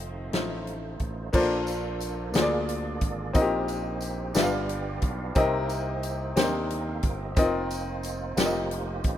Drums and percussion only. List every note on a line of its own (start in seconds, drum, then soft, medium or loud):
0.33 snare loud
0.33 closed hi-hat medium
0.67 closed hi-hat soft
1.00 kick medium
1.00 closed hi-hat medium
1.33 kick medium
1.33 crash medium
1.33 tambourine soft
1.67 closed hi-hat medium
1.67 tambourine soft
2.00 closed hi-hat medium
2.00 tambourine medium
2.34 snare loud
2.34 closed hi-hat loud
2.34 tambourine medium
2.69 closed hi-hat medium
3.01 kick medium
3.01 closed hi-hat medium
3.35 kick loud
3.35 closed hi-hat medium
3.35 tambourine soft
3.68 closed hi-hat medium
3.68 tambourine medium
4.01 closed hi-hat medium
4.01 tambourine medium
4.35 snare loud
4.35 closed hi-hat medium
4.35 tambourine loud
4.69 closed hi-hat medium
5.02 kick medium
5.02 closed hi-hat medium
5.35 kick loud
5.35 closed hi-hat medium
5.35 tambourine soft
5.69 closed hi-hat medium
5.69 tambourine medium
6.03 closed hi-hat medium
6.03 tambourine soft
6.37 snare loud
6.37 closed hi-hat medium
6.37 tambourine medium
6.70 closed hi-hat medium
7.03 kick medium
7.03 closed hi-hat medium
7.36 kick loud
7.36 closed hi-hat medium
7.36 tambourine medium
7.71 closed hi-hat medium
7.71 tambourine medium
8.03 closed hi-hat medium
8.03 tambourine soft
8.37 snare loud
8.37 closed hi-hat medium
8.37 tambourine medium
8.71 closed hi-hat medium
9.04 kick medium
9.04 closed hi-hat medium